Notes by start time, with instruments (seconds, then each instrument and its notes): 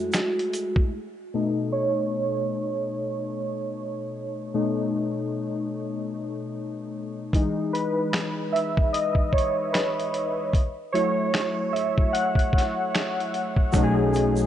Already playing: vibraphone F#4
0.13 finger snap, snare, closed hi-hat, shaker
0.39 closed hi-hat
0.53 closed hi-hat, shaker
0.76 kick
1.34 synth keys B2 A3 D#4
1.72 synth keys C#5
4.54 synth keys B2 A3 D#4
7.33 synth keys E3 G#3 D#4, kick, closed hi-hat
7.73 synth keys B4, closed hi-hat
8.13 finger snap, snare, closed hi-hat
8.52 synth keys E5, closed hi-hat
8.77 kick
8.93 synth keys D#5, closed hi-hat
9.15 kick
9.33 synth keys C#5, kick
9.38 closed hi-hat
9.73 synth keys B4, finger snap, snare, closed hi-hat
10.00 closed hi-hat
10.14 closed hi-hat
10.53 kick, closed hi-hat
10.92 synth keys F#3 A3 E4 C#5, closed hi-hat
11.34 finger snap, snare, closed hi-hat
11.73 synth keys E5, closed hi-hat
11.98 kick
12.13 synth keys F#5, closed hi-hat
12.35 kick, closed hi-hat
12.53 kick
12.58 snare, closed hi-hat
12.95 finger snap, snare, closed hi-hat
13.20 closed hi-hat
13.34 closed hi-hat
13.56 kick
13.72 upright bass B1, synth keys F#3 A3 C#4 D#4, kick, closed hi-hat, shaker
13.77 synth keys F#4
13.83 synth keys G#4
14.14 closed hi-hat, shaker
14.36 shaker